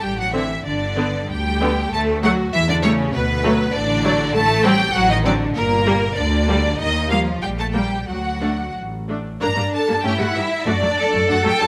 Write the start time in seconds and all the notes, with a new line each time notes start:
0.02 A1 G3 G4 G5
0.18 F#3 F#4 F#5
0.33 D3 E3 C4 E4 E5
0.65 G1 D3 D4 D5
0.97 D3 B3
1.30 D2 G3 G4 G5
1.61 D3 B3
1.92 D2 A3 A4 A5
2.23 F#3 A3 F#4 F#5
2.54 E2 E3 E4 E5
2.69 D3 D4 D5
2.84 C#3 G3 A3 C#4 C#5
3.13 D2 B2 B3 B4
3.45 F#3 A3
3.74 A1 D3 D4 D5
4.05 F#3 A3
4.33 A1 A3 A4 A5
4.64 F#3 G3 C4 G4 G5
4.94 A1 F#3 F#4 F#5
5.10 D#3 D#4 D#5
5.25 D3 F#3 C4 D4 D5
5.55 G1 A#2 A#3 A#4
5.86 G3 A#3
6.17 D2 D3 D4 D5
6.48 G3 A#3
6.78 D#2 D#3 D#4 D#5
7.10 F3 G3 A#3 F4 F5
7.42 A#1 G3 G4 G5
7.59 A3 A4 A5
7.74 G3 A#3 G4 G5
8.07 D2 F#3 F#4 F#5
8.42 A3 D4
8.76 A1
9.09 A3 D4
9.41 G2 A#3 D4 A#4 A#5
9.57 G2 G3 A#3
9.73 A4 A5
9.88 G2 G3 A#3
10.03 G2 A3 C#4 E4 G4 G5
10.19 G2 G3 A3 F#4 F#5
10.35 G2 E3 G3 E4 E5
10.65 F#2 A3 D4 F#4 D5
10.81 F#2 F#3 A3
10.98 A4
11.13 F#2 F#3 A3
11.28 F#2 A3 D4 F#4 F#5
11.44 F#2 F#3 A3 G4 G5
11.60 F#2 D3 F#3 A4 A5